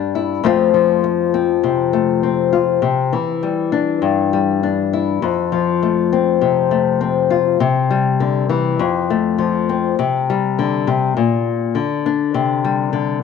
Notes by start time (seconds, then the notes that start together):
Already playing: G2 G3 D4
0.15 E4
0.44 F2 F3 A3 C4 F4
0.74 F3
1.04 muted nylon-string guitar stroke
1.34 C4
1.64 C3
1.93 A3
2.23 C4
2.53 F4
2.82 C3
3.13 E3
3.43 G3
3.72 D4
4.02 G2
4.33 G3
4.63 D4
4.93 E4
5.22 F2
5.52 F3
5.83 A3
6.13 C4
6.41 C3
6.71 A3
7.01 C4
7.30 F4
7.60 C3
7.91 G3
8.20 D3
8.49 E3
8.79 F2
9.10 A3
9.38 F3
9.69 C4
9.99 C3
10.30 G3
10.59 D3
10.87 C3
11.17 A#2
11.75 D3
12.06 D4
12.34 C3
12.65 G3
12.93 D3